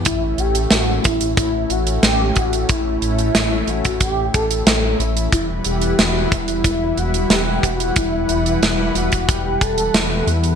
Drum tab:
HH |x-xxx-xxx-xxx-xx|x-xxx-xxx-xxx-xx|x-xxx-xxx-xxx-xx|x-xxx-xxx-xxx-xx|
SD |----o-------o---|----o-------o---|----o-------o---|----o-------o---|
BD |o-----o-o-----o-|o------oo-o-----|o-----o-o-----o-|o------oo-o-----|